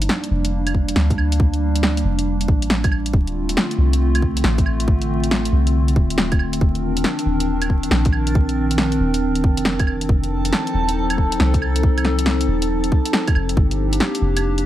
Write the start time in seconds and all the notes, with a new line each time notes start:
Already playing: G3 A#3 D4
0.02 closed hi-hat
0.09 snare
0.24 closed hi-hat
0.31 F1
0.45 closed hi-hat
0.67 closed hi-hat, claves
0.75 kick
0.88 closed hi-hat
0.96 D2, snare
1.10 kick, closed hi-hat
1.18 claves
1.32 closed hi-hat
1.40 kick
1.53 closed hi-hat
1.76 closed hi-hat
1.83 snare
1.97 closed hi-hat
2.04 F1
2.19 closed hi-hat
2.41 closed hi-hat
2.48 A1, kick
2.62 closed hi-hat
2.70 snare
2.84 kick, closed hi-hat, claves
2.92 claves
3.06 closed hi-hat
3.13 D1 D3 A3 C4 F4, kick
3.27 closed hi-hat
3.49 closed hi-hat
3.57 snare
3.71 closed hi-hat
3.78 C2
3.93 closed hi-hat
4.15 closed hi-hat, claves
4.22 kick
4.37 closed hi-hat
4.44 A1, snare
4.58 kick, closed hi-hat
4.66 claves
4.80 closed hi-hat
4.88 kick
5.02 closed hi-hat
5.24 closed hi-hat
5.31 snare
5.45 closed hi-hat
5.52 C2
5.67 closed hi-hat
5.88 closed hi-hat
5.96 D1, kick
6.10 closed hi-hat
6.18 snare
6.32 kick, closed hi-hat, claves
6.39 claves
6.53 closed hi-hat
6.61 D#1 D#3 D4 A#4 A5, kick
6.75 closed hi-hat
6.97 closed hi-hat
7.04 snare
7.19 closed hi-hat
7.26 D#1
7.40 closed hi-hat
7.62 closed hi-hat, claves
7.70 kick
7.83 closed hi-hat
7.91 A#1, snare
8.05 kick, closed hi-hat
8.12 claves
8.27 closed hi-hat
8.35 kick
8.49 closed hi-hat
8.71 closed hi-hat
8.78 snare
8.92 closed hi-hat
9.00 D#1
9.14 closed hi-hat
9.36 closed hi-hat
9.44 F1, kick
9.57 closed hi-hat
9.65 snare
9.79 kick, closed hi-hat, claves
9.87 claves
10.01 closed hi-hat
10.09 F1 F3 D#4 A4, kick
10.23 closed hi-hat
10.45 closed hi-hat
10.53 snare
10.67 closed hi-hat
10.74 D#1
10.89 closed hi-hat
11.10 closed hi-hat, claves
11.18 kick
11.32 closed hi-hat
11.40 C2, snare
11.54 kick, closed hi-hat
11.62 claves
11.76 closed hi-hat
11.83 kick
11.98 closed hi-hat, claves
12.05 snare
12.19 closed hi-hat
12.26 snare
12.41 closed hi-hat
12.48 D#1
12.62 closed hi-hat
12.84 closed hi-hat
12.92 kick
13.06 closed hi-hat
13.13 snare
13.28 kick, closed hi-hat, claves
13.35 F1, claves
13.49 closed hi-hat
13.57 G1 A#3 D4 G4, kick
13.71 closed hi-hat
13.93 closed hi-hat
14.00 snare
14.15 closed hi-hat
14.21 F1
14.37 closed hi-hat, claves
14.58 closed hi-hat